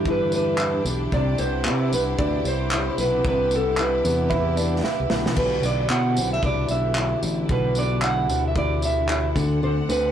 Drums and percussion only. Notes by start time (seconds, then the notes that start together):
0.05 kick
0.32 tambourine
0.58 clap
0.86 tambourine
1.12 kick
1.38 tambourine
1.65 clap
1.93 tambourine
2.19 kick
2.45 tambourine
2.71 clap
2.98 tambourine
3.25 kick
3.51 tambourine
3.77 clap
4.05 tambourine
4.31 kick
4.57 tambourine
4.84 snare
5.10 snare
5.26 snare
5.36 kick, crash
5.63 tambourine
5.90 clap
6.17 tambourine
6.43 kick
6.69 tambourine
6.95 clap
7.23 tambourine
7.49 kick
7.75 tambourine
8.02 clap
8.30 tambourine
8.56 kick
8.82 tambourine
9.09 clap
9.36 kick, tambourine
9.90 tambourine